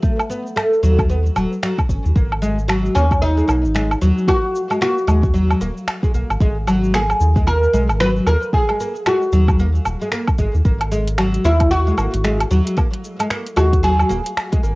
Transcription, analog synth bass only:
0.83 1.30 D#2 medium
1.36 1.46 D#1 medium
1.89 1.99 G#1 medium
2.05 2.12 D#2 medium
2.16 2.89 G#1 medium
2.95 3.42 D#2 medium
3.48 3.66 B1 medium
3.64 3.95 G#1 loud
4.02 4.12 D#2 medium
5.08 5.54 D#2 medium
5.61 5.71 D#1 loud
6.14 6.24 B1 medium
6.30 6.36 G#1 medium
6.41 7.14 G#1 medium
7.20 7.67 D#2 medium
7.73 7.90 B1 medium
7.89 8.20 G#1 loud
8.26 8.36 D#2 medium
9.32 9.79 D#2 medium
9.86 9.96 D#1 medium
10.39 10.49 G#1 medium
10.54 10.61 D#2 medium
10.65 11.38 G#1 medium
11.44 11.91 D#2 medium
11.98 12.08 G#1 medium
12.14 12.45 G#1 loud
12.51 12.61 D#2 medium
13.57 14.04 D#2 medium
14.10 14.20 D#1 medium
14.63 14.73 G#1 medium

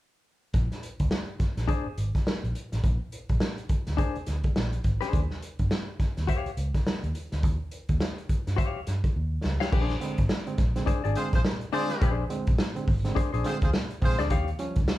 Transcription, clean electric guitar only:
1.68 1.86 D4 medium
1.68 1.87 G#4 medium
1.68 1.87 C5 medium
3.97 4.16 D4 medium
3.97 4.17 G#4 medium
3.97 4.17 C5 medium
5.01 5.20 D4 medium
5.01 5.20 G#4 medium
5.01 5.20 C5 medium
6.27 6.50 G4 medium
6.27 6.50 C#5 medium
6.27 6.51 F5 medium
8.56 8.79 G4 medium
8.56 8.80 C#5 medium
8.56 8.80 F5 medium
9.60 9.72 G4 medium
9.60 9.73 C#5 medium
9.60 9.74 F5 medium
9.72 9.94 D4 medium
9.72 9.95 G#4 medium
9.72 9.95 C5 medium
10.86 11.01 D4 medium
10.86 11.02 G#4 medium
10.86 11.02 C5 medium
11.04 11.18 D4 medium
11.04 11.17 G#4 medium
11.04 11.17 D5 medium
11.73 11.91 D4 loud
11.73 11.91 G#4 medium
11.73 11.92 D5 loud
12.01 12.23 D4 medium
12.01 12.24 G#4 medium
12.01 12.24 C5 medium
13.15 13.30 D4 medium
13.15 13.31 G#4 medium
13.15 13.31 C5 medium
13.33 13.47 D4 medium
13.33 13.46 G#4 medium
13.33 13.46 C5 medium
14.19 14.32 D4 medium
14.19 14.30 G#4 medium
14.19 14.30 D5 medium
14.30 14.49 G4 medium
14.30 14.49 C#5 medium
14.30 14.49 F5 loud

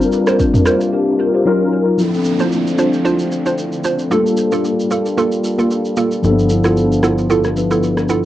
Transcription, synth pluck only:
0.27 0.40 F4 medium
0.27 0.40 A#4 medium
0.27 0.40 C5 medium
0.66 0.81 F4 medium
0.66 0.81 A#4 medium
0.66 0.81 C5 medium
2.40 2.76 D4 medium
2.40 2.76 F4 medium
2.40 2.76 C5 medium
2.78 3.03 D4 medium
2.78 3.03 F4 medium
2.78 3.03 C5 medium
3.05 3.43 D4 medium
3.05 3.43 F4 medium
3.05 3.43 C5 medium
3.46 3.59 D4 medium
3.46 3.59 F4 medium
3.46 3.59 C5 medium
3.84 4.00 D4 medium
3.84 4.00 F4 medium
3.84 4.00 C5 medium
4.11 4.26 A#3 medium
4.11 4.26 F4 medium
4.11 4.27 A4 loud
4.52 4.65 A#3 medium
4.52 4.65 F4 medium
4.52 4.65 A4 medium
4.91 5.06 A#3 medium
4.91 5.06 F4 medium
4.91 5.06 A4 medium
5.17 5.33 A#3 medium
5.17 5.33 F4 medium
5.17 5.33 A4 loud
5.58 5.71 A#3 medium
5.58 5.71 F4 medium
5.58 5.71 A4 medium
5.97 6.12 A#3 medium
5.97 6.12 F4 medium
5.97 6.12 A4 medium
6.65 7.00 B3 medium
6.65 7.01 E4 medium
6.65 7.01 F4 medium
6.65 7.01 A4 medium
7.03 7.28 B3 medium
7.03 7.28 E4 medium
7.03 7.28 F4 medium
7.03 7.28 A4 medium
7.30 7.68 B3 medium
7.30 7.68 E4 medium
7.30 7.68 F4 medium
7.30 7.68 A4 loud
7.71 7.83 B3 medium
7.71 7.84 E4 medium
7.71 7.84 F4 medium
7.71 7.84 A4 medium
8.09 8.25 B3 medium
8.09 8.25 E4 medium
8.09 8.25 F4 medium
8.09 8.25 A4 medium

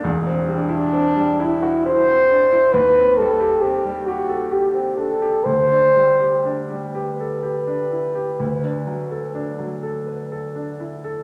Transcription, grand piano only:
0.03 2.70 E1 medium
0.03 2.70 E2 medium
0.27 0.62 C4 medium
0.47 0.84 G3 medium
0.69 1.07 E4 medium
0.93 1.31 C4 medium
1.16 1.54 G3 medium
1.40 1.78 E4 medium
1.63 1.86 F#4 medium
1.86 2.22 E4 medium
2.08 2.44 C4 medium
2.31 2.53 D4 medium
2.52 2.74 E4 medium
2.74 5.42 D#2 medium
2.96 3.31 C4 medium
3.19 3.53 G3 medium
3.40 3.75 G4 medium
3.62 3.98 C4 medium
3.85 4.21 G3 medium
4.08 4.44 G4 medium
4.29 4.52 A4 soft
4.52 4.89 G4 soft
4.74 5.12 C4 soft
4.98 5.22 D4 soft
5.22 5.47 G4 medium
5.46 8.35 D2 medium
5.71 6.11 D4 soft
5.96 6.35 G3 soft
6.20 6.60 G4 soft
6.45 6.85 D4 soft
6.70 7.10 G3 soft
6.95 7.34 G4 soft
7.20 7.44 A4 soft
7.43 7.82 G4 soft
7.67 8.06 D4 soft
7.92 8.16 E4 soft
8.15 8.40 G4 soft
8.40 11.23 D2 medium
8.64 9.03 D4 soft
8.87 9.26 F#3 soft
9.11 9.50 A4 soft
9.35 9.74 D4 soft
9.59 9.98 F#3 soft
9.83 10.22 A4 soft
10.06 10.31 B4 soft
10.32 10.70 A4 soft
10.55 10.94 D4 soft
10.80 11.04 E4 soft
11.04 11.23 A4 soft

